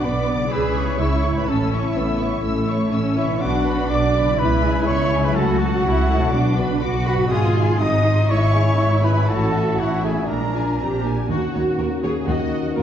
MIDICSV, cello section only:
0, 0, Header, 1, 2, 480
1, 0, Start_track
1, 0, Tempo, 484262
1, 1467, Time_signature, 4, 2, 24, 8
1, 5795, Tempo, 494641
1, 12569, End_track
2, 0, Start_track
2, 0, Title_t, "Cello section"
2, 0, Program_c, 0, 48
2, 22, Note_on_c, 0, 59, 47
2, 496, Note_on_c, 0, 68, 54
2, 507, Note_off_c, 0, 59, 0
2, 972, Note_off_c, 0, 68, 0
2, 984, Note_on_c, 0, 64, 55
2, 1454, Note_off_c, 0, 64, 0
2, 1466, Note_on_c, 0, 61, 56
2, 1933, Note_off_c, 0, 61, 0
2, 1941, Note_on_c, 0, 59, 51
2, 2409, Note_on_c, 0, 57, 50
2, 2416, Note_off_c, 0, 59, 0
2, 2882, Note_off_c, 0, 57, 0
2, 2898, Note_on_c, 0, 61, 56
2, 3379, Note_off_c, 0, 61, 0
2, 3381, Note_on_c, 0, 62, 58
2, 4326, Note_off_c, 0, 62, 0
2, 4351, Note_on_c, 0, 64, 67
2, 5294, Note_off_c, 0, 64, 0
2, 5309, Note_on_c, 0, 66, 72
2, 5794, Note_off_c, 0, 66, 0
2, 5801, Note_on_c, 0, 64, 65
2, 6275, Note_on_c, 0, 62, 64
2, 6276, Note_off_c, 0, 64, 0
2, 6740, Note_off_c, 0, 62, 0
2, 6751, Note_on_c, 0, 66, 70
2, 7216, Note_off_c, 0, 66, 0
2, 7220, Note_on_c, 0, 65, 72
2, 7688, Note_off_c, 0, 65, 0
2, 7701, Note_on_c, 0, 63, 68
2, 8172, Note_on_c, 0, 64, 65
2, 8177, Note_off_c, 0, 63, 0
2, 9130, Note_off_c, 0, 64, 0
2, 9134, Note_on_c, 0, 66, 61
2, 9611, Note_on_c, 0, 64, 54
2, 9613, Note_off_c, 0, 66, 0
2, 10094, Note_on_c, 0, 62, 43
2, 10099, Note_off_c, 0, 64, 0
2, 10818, Note_off_c, 0, 62, 0
2, 11079, Note_on_c, 0, 39, 57
2, 11157, Note_off_c, 0, 39, 0
2, 11321, Note_on_c, 0, 39, 35
2, 11398, Note_off_c, 0, 39, 0
2, 11552, Note_on_c, 0, 39, 41
2, 11630, Note_off_c, 0, 39, 0
2, 11795, Note_on_c, 0, 39, 38
2, 11873, Note_off_c, 0, 39, 0
2, 12038, Note_on_c, 0, 39, 54
2, 12115, Note_off_c, 0, 39, 0
2, 12516, Note_on_c, 0, 39, 40
2, 12569, Note_off_c, 0, 39, 0
2, 12569, End_track
0, 0, End_of_file